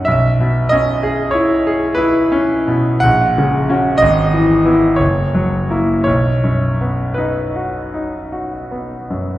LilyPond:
<<
  \new Staff \with { instrumentName = "Grand piano" } { \time 3/4 \key b \major \tempo 4 = 58 \tuplet 3/2 { e''4 dis''8~ dis''8 cis''4 } b'4 | fis''4 dis''4 cis''4 | cis''4 b'4. r8 | }
  \new Staff \with { instrumentName = "Grand piano" } { \time 3/4 \key b \major \tuplet 3/2 { b,,8 b,8 cis'8 gis'8 e'8 gis'8 e'8 cis'8 b,8 } | \tuplet 3/2 { ais,,8 cis8 <cis' fis'>8 gis,,8 e8 <b e'>8 fis,,8 fis8 <ais e'>8 } | \tuplet 3/2 { b,,8 fis,8 b8 dis'8 fis'8 dis'8 fis'8 b8 fis,8 } | }
>>